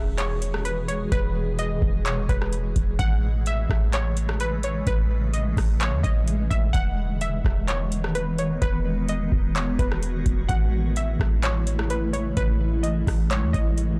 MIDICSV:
0, 0, Header, 1, 5, 480
1, 0, Start_track
1, 0, Key_signature, 4, "major"
1, 0, Tempo, 468750
1, 1146, Time_signature, 4, 2, 24, 8
1, 14332, End_track
2, 0, Start_track
2, 0, Title_t, "Synth pluck"
2, 0, Program_c, 0, 84
2, 0, Note_on_c, 0, 76, 88
2, 157, Note_off_c, 0, 76, 0
2, 185, Note_on_c, 0, 73, 93
2, 637, Note_off_c, 0, 73, 0
2, 665, Note_on_c, 0, 71, 75
2, 894, Note_off_c, 0, 71, 0
2, 905, Note_on_c, 0, 73, 75
2, 1134, Note_off_c, 0, 73, 0
2, 1145, Note_on_c, 0, 71, 98
2, 1597, Note_off_c, 0, 71, 0
2, 1628, Note_on_c, 0, 75, 83
2, 2078, Note_off_c, 0, 75, 0
2, 2100, Note_on_c, 0, 73, 80
2, 2331, Note_off_c, 0, 73, 0
2, 2349, Note_on_c, 0, 71, 75
2, 2576, Note_off_c, 0, 71, 0
2, 3061, Note_on_c, 0, 78, 104
2, 3515, Note_off_c, 0, 78, 0
2, 3555, Note_on_c, 0, 76, 87
2, 4002, Note_off_c, 0, 76, 0
2, 4032, Note_on_c, 0, 73, 88
2, 4481, Note_off_c, 0, 73, 0
2, 4511, Note_on_c, 0, 71, 91
2, 4737, Note_off_c, 0, 71, 0
2, 4751, Note_on_c, 0, 73, 74
2, 4977, Note_off_c, 0, 73, 0
2, 4988, Note_on_c, 0, 71, 106
2, 5438, Note_off_c, 0, 71, 0
2, 5463, Note_on_c, 0, 75, 73
2, 5916, Note_off_c, 0, 75, 0
2, 5950, Note_on_c, 0, 73, 93
2, 6176, Note_off_c, 0, 73, 0
2, 6180, Note_on_c, 0, 75, 80
2, 6634, Note_off_c, 0, 75, 0
2, 6661, Note_on_c, 0, 76, 84
2, 6891, Note_off_c, 0, 76, 0
2, 6893, Note_on_c, 0, 78, 110
2, 7350, Note_off_c, 0, 78, 0
2, 7387, Note_on_c, 0, 76, 87
2, 7838, Note_off_c, 0, 76, 0
2, 7865, Note_on_c, 0, 73, 92
2, 8317, Note_off_c, 0, 73, 0
2, 8347, Note_on_c, 0, 71, 81
2, 8574, Note_off_c, 0, 71, 0
2, 8589, Note_on_c, 0, 73, 76
2, 8816, Note_off_c, 0, 73, 0
2, 8824, Note_on_c, 0, 71, 107
2, 9277, Note_off_c, 0, 71, 0
2, 9310, Note_on_c, 0, 75, 83
2, 9760, Note_off_c, 0, 75, 0
2, 9784, Note_on_c, 0, 73, 78
2, 10013, Note_off_c, 0, 73, 0
2, 10026, Note_on_c, 0, 71, 74
2, 10254, Note_off_c, 0, 71, 0
2, 10737, Note_on_c, 0, 78, 101
2, 11193, Note_off_c, 0, 78, 0
2, 11233, Note_on_c, 0, 76, 80
2, 11681, Note_off_c, 0, 76, 0
2, 11710, Note_on_c, 0, 73, 86
2, 12159, Note_off_c, 0, 73, 0
2, 12189, Note_on_c, 0, 71, 88
2, 12416, Note_off_c, 0, 71, 0
2, 12424, Note_on_c, 0, 73, 73
2, 12653, Note_off_c, 0, 73, 0
2, 12666, Note_on_c, 0, 71, 108
2, 13117, Note_off_c, 0, 71, 0
2, 13139, Note_on_c, 0, 75, 72
2, 13594, Note_off_c, 0, 75, 0
2, 13626, Note_on_c, 0, 73, 94
2, 13854, Note_off_c, 0, 73, 0
2, 13857, Note_on_c, 0, 75, 80
2, 14313, Note_off_c, 0, 75, 0
2, 14332, End_track
3, 0, Start_track
3, 0, Title_t, "Ambient pad"
3, 0, Program_c, 1, 92
3, 0, Note_on_c, 1, 47, 78
3, 0, Note_on_c, 1, 51, 68
3, 0, Note_on_c, 1, 52, 73
3, 0, Note_on_c, 1, 56, 71
3, 0, Note_on_c, 1, 68, 87
3, 1127, Note_off_c, 1, 51, 0
3, 3026, Note_off_c, 1, 56, 0
3, 3026, Note_off_c, 1, 68, 0
3, 3027, Note_off_c, 1, 47, 0
3, 3068, Note_on_c, 1, 49, 77
3, 3068, Note_on_c, 1, 56, 75
3, 3068, Note_on_c, 1, 57, 72
3, 6869, Note_off_c, 1, 49, 0
3, 6869, Note_off_c, 1, 57, 0
3, 6904, Note_on_c, 1, 59, 70
3, 6905, Note_on_c, 1, 51, 77
3, 8831, Note_on_c, 1, 66, 70
3, 10703, Note_off_c, 1, 52, 0
3, 10707, Note_off_c, 1, 51, 0
3, 10707, Note_off_c, 1, 59, 0
3, 10729, Note_off_c, 1, 66, 0
3, 10746, Note_on_c, 1, 57, 72
3, 10747, Note_on_c, 1, 49, 80
3, 10747, Note_on_c, 1, 64, 83
3, 10748, Note_on_c, 1, 52, 72
3, 14332, Note_off_c, 1, 49, 0
3, 14332, Note_off_c, 1, 52, 0
3, 14332, Note_off_c, 1, 56, 0
3, 14332, Note_off_c, 1, 57, 0
3, 14332, Note_off_c, 1, 64, 0
3, 14332, End_track
4, 0, Start_track
4, 0, Title_t, "808-style bass"
4, 0, Program_c, 2, 38
4, 0, Note_on_c, 2, 28, 109
4, 1105, Note_off_c, 2, 28, 0
4, 1146, Note_on_c, 2, 28, 115
4, 1837, Note_off_c, 2, 28, 0
4, 1865, Note_on_c, 2, 28, 112
4, 2327, Note_off_c, 2, 28, 0
4, 2346, Note_on_c, 2, 28, 100
4, 2807, Note_off_c, 2, 28, 0
4, 2826, Note_on_c, 2, 28, 106
4, 3057, Note_off_c, 2, 28, 0
4, 3066, Note_on_c, 2, 33, 122
4, 3757, Note_off_c, 2, 33, 0
4, 3785, Note_on_c, 2, 33, 105
4, 4945, Note_off_c, 2, 33, 0
4, 4986, Note_on_c, 2, 33, 118
4, 5677, Note_off_c, 2, 33, 0
4, 5704, Note_on_c, 2, 33, 110
4, 6065, Note_on_c, 2, 40, 100
4, 6081, Note_off_c, 2, 33, 0
4, 6180, Note_off_c, 2, 40, 0
4, 6184, Note_on_c, 2, 33, 103
4, 6646, Note_off_c, 2, 33, 0
4, 6665, Note_on_c, 2, 33, 102
4, 6896, Note_off_c, 2, 33, 0
4, 6906, Note_on_c, 2, 28, 113
4, 7597, Note_off_c, 2, 28, 0
4, 7625, Note_on_c, 2, 28, 107
4, 8785, Note_off_c, 2, 28, 0
4, 8826, Note_on_c, 2, 28, 118
4, 9518, Note_off_c, 2, 28, 0
4, 9544, Note_on_c, 2, 28, 110
4, 10006, Note_off_c, 2, 28, 0
4, 10026, Note_on_c, 2, 28, 98
4, 10487, Note_off_c, 2, 28, 0
4, 10506, Note_on_c, 2, 28, 108
4, 10736, Note_off_c, 2, 28, 0
4, 10746, Note_on_c, 2, 33, 115
4, 11437, Note_off_c, 2, 33, 0
4, 11466, Note_on_c, 2, 33, 111
4, 12625, Note_off_c, 2, 33, 0
4, 12666, Note_on_c, 2, 33, 114
4, 13357, Note_off_c, 2, 33, 0
4, 13386, Note_on_c, 2, 33, 114
4, 13746, Note_on_c, 2, 40, 101
4, 13762, Note_off_c, 2, 33, 0
4, 13860, Note_off_c, 2, 40, 0
4, 13866, Note_on_c, 2, 33, 99
4, 14327, Note_off_c, 2, 33, 0
4, 14332, End_track
5, 0, Start_track
5, 0, Title_t, "Drums"
5, 187, Note_on_c, 9, 42, 86
5, 193, Note_on_c, 9, 39, 126
5, 289, Note_off_c, 9, 42, 0
5, 295, Note_off_c, 9, 39, 0
5, 429, Note_on_c, 9, 42, 75
5, 531, Note_off_c, 9, 42, 0
5, 554, Note_on_c, 9, 37, 89
5, 656, Note_off_c, 9, 37, 0
5, 667, Note_on_c, 9, 42, 78
5, 770, Note_off_c, 9, 42, 0
5, 907, Note_on_c, 9, 42, 76
5, 1009, Note_off_c, 9, 42, 0
5, 1146, Note_on_c, 9, 36, 116
5, 1147, Note_on_c, 9, 42, 85
5, 1249, Note_off_c, 9, 36, 0
5, 1249, Note_off_c, 9, 42, 0
5, 1624, Note_on_c, 9, 42, 77
5, 1727, Note_off_c, 9, 42, 0
5, 1865, Note_on_c, 9, 36, 108
5, 1968, Note_off_c, 9, 36, 0
5, 2106, Note_on_c, 9, 42, 84
5, 2112, Note_on_c, 9, 39, 126
5, 2208, Note_off_c, 9, 42, 0
5, 2215, Note_off_c, 9, 39, 0
5, 2346, Note_on_c, 9, 36, 100
5, 2348, Note_on_c, 9, 42, 71
5, 2448, Note_off_c, 9, 36, 0
5, 2451, Note_off_c, 9, 42, 0
5, 2474, Note_on_c, 9, 37, 92
5, 2577, Note_off_c, 9, 37, 0
5, 2586, Note_on_c, 9, 42, 73
5, 2689, Note_off_c, 9, 42, 0
5, 2825, Note_on_c, 9, 42, 77
5, 2826, Note_on_c, 9, 36, 89
5, 2928, Note_off_c, 9, 36, 0
5, 2928, Note_off_c, 9, 42, 0
5, 3064, Note_on_c, 9, 42, 82
5, 3066, Note_on_c, 9, 36, 116
5, 3166, Note_off_c, 9, 42, 0
5, 3168, Note_off_c, 9, 36, 0
5, 3544, Note_on_c, 9, 42, 72
5, 3646, Note_off_c, 9, 42, 0
5, 3785, Note_on_c, 9, 36, 107
5, 3794, Note_on_c, 9, 37, 97
5, 3887, Note_off_c, 9, 36, 0
5, 3897, Note_off_c, 9, 37, 0
5, 4026, Note_on_c, 9, 42, 84
5, 4032, Note_on_c, 9, 39, 126
5, 4128, Note_off_c, 9, 42, 0
5, 4134, Note_off_c, 9, 39, 0
5, 4267, Note_on_c, 9, 42, 74
5, 4369, Note_off_c, 9, 42, 0
5, 4392, Note_on_c, 9, 37, 93
5, 4495, Note_off_c, 9, 37, 0
5, 4505, Note_on_c, 9, 42, 74
5, 4607, Note_off_c, 9, 42, 0
5, 4744, Note_on_c, 9, 42, 79
5, 4846, Note_off_c, 9, 42, 0
5, 4984, Note_on_c, 9, 42, 82
5, 4985, Note_on_c, 9, 36, 120
5, 5087, Note_off_c, 9, 42, 0
5, 5088, Note_off_c, 9, 36, 0
5, 5463, Note_on_c, 9, 42, 73
5, 5566, Note_off_c, 9, 42, 0
5, 5704, Note_on_c, 9, 36, 104
5, 5707, Note_on_c, 9, 46, 56
5, 5715, Note_on_c, 9, 37, 93
5, 5807, Note_off_c, 9, 36, 0
5, 5809, Note_off_c, 9, 46, 0
5, 5817, Note_off_c, 9, 37, 0
5, 5945, Note_on_c, 9, 42, 88
5, 5952, Note_on_c, 9, 39, 120
5, 6048, Note_off_c, 9, 42, 0
5, 6054, Note_off_c, 9, 39, 0
5, 6185, Note_on_c, 9, 36, 98
5, 6187, Note_on_c, 9, 42, 73
5, 6287, Note_off_c, 9, 36, 0
5, 6289, Note_off_c, 9, 42, 0
5, 6426, Note_on_c, 9, 42, 76
5, 6529, Note_off_c, 9, 42, 0
5, 6666, Note_on_c, 9, 36, 88
5, 6666, Note_on_c, 9, 42, 78
5, 6768, Note_off_c, 9, 36, 0
5, 6769, Note_off_c, 9, 42, 0
5, 6905, Note_on_c, 9, 36, 116
5, 6906, Note_on_c, 9, 42, 85
5, 7008, Note_off_c, 9, 36, 0
5, 7009, Note_off_c, 9, 42, 0
5, 7384, Note_on_c, 9, 42, 75
5, 7486, Note_off_c, 9, 42, 0
5, 7625, Note_on_c, 9, 36, 108
5, 7636, Note_on_c, 9, 37, 95
5, 7727, Note_off_c, 9, 36, 0
5, 7738, Note_off_c, 9, 37, 0
5, 7866, Note_on_c, 9, 42, 86
5, 7873, Note_on_c, 9, 39, 120
5, 7969, Note_off_c, 9, 42, 0
5, 7975, Note_off_c, 9, 39, 0
5, 8108, Note_on_c, 9, 42, 73
5, 8211, Note_off_c, 9, 42, 0
5, 8235, Note_on_c, 9, 37, 91
5, 8337, Note_off_c, 9, 37, 0
5, 8347, Note_on_c, 9, 42, 75
5, 8449, Note_off_c, 9, 42, 0
5, 8586, Note_on_c, 9, 42, 74
5, 8688, Note_off_c, 9, 42, 0
5, 8825, Note_on_c, 9, 42, 84
5, 8826, Note_on_c, 9, 36, 116
5, 8928, Note_off_c, 9, 36, 0
5, 8928, Note_off_c, 9, 42, 0
5, 9303, Note_on_c, 9, 42, 74
5, 9406, Note_off_c, 9, 42, 0
5, 9545, Note_on_c, 9, 36, 107
5, 9648, Note_off_c, 9, 36, 0
5, 9786, Note_on_c, 9, 42, 86
5, 9792, Note_on_c, 9, 39, 124
5, 9888, Note_off_c, 9, 42, 0
5, 9895, Note_off_c, 9, 39, 0
5, 10025, Note_on_c, 9, 36, 98
5, 10027, Note_on_c, 9, 42, 75
5, 10128, Note_off_c, 9, 36, 0
5, 10130, Note_off_c, 9, 42, 0
5, 10154, Note_on_c, 9, 37, 88
5, 10257, Note_off_c, 9, 37, 0
5, 10266, Note_on_c, 9, 42, 75
5, 10369, Note_off_c, 9, 42, 0
5, 10505, Note_on_c, 9, 42, 73
5, 10506, Note_on_c, 9, 36, 92
5, 10607, Note_off_c, 9, 42, 0
5, 10608, Note_off_c, 9, 36, 0
5, 10745, Note_on_c, 9, 42, 85
5, 10746, Note_on_c, 9, 36, 116
5, 10847, Note_off_c, 9, 42, 0
5, 10848, Note_off_c, 9, 36, 0
5, 11225, Note_on_c, 9, 42, 77
5, 11327, Note_off_c, 9, 42, 0
5, 11465, Note_on_c, 9, 36, 107
5, 11476, Note_on_c, 9, 37, 97
5, 11568, Note_off_c, 9, 36, 0
5, 11578, Note_off_c, 9, 37, 0
5, 11706, Note_on_c, 9, 42, 86
5, 11712, Note_on_c, 9, 39, 123
5, 11808, Note_off_c, 9, 42, 0
5, 11815, Note_off_c, 9, 39, 0
5, 11948, Note_on_c, 9, 42, 73
5, 12051, Note_off_c, 9, 42, 0
5, 12074, Note_on_c, 9, 37, 91
5, 12176, Note_off_c, 9, 37, 0
5, 12186, Note_on_c, 9, 42, 77
5, 12289, Note_off_c, 9, 42, 0
5, 12427, Note_on_c, 9, 42, 78
5, 12529, Note_off_c, 9, 42, 0
5, 12665, Note_on_c, 9, 42, 83
5, 12666, Note_on_c, 9, 36, 111
5, 12768, Note_off_c, 9, 36, 0
5, 12768, Note_off_c, 9, 42, 0
5, 13144, Note_on_c, 9, 42, 76
5, 13247, Note_off_c, 9, 42, 0
5, 13385, Note_on_c, 9, 36, 106
5, 13388, Note_on_c, 9, 46, 57
5, 13396, Note_on_c, 9, 37, 94
5, 13488, Note_off_c, 9, 36, 0
5, 13490, Note_off_c, 9, 46, 0
5, 13499, Note_off_c, 9, 37, 0
5, 13626, Note_on_c, 9, 42, 82
5, 13632, Note_on_c, 9, 39, 120
5, 13728, Note_off_c, 9, 42, 0
5, 13735, Note_off_c, 9, 39, 0
5, 13866, Note_on_c, 9, 36, 96
5, 13869, Note_on_c, 9, 42, 73
5, 13968, Note_off_c, 9, 36, 0
5, 13971, Note_off_c, 9, 42, 0
5, 14106, Note_on_c, 9, 42, 76
5, 14209, Note_off_c, 9, 42, 0
5, 14332, End_track
0, 0, End_of_file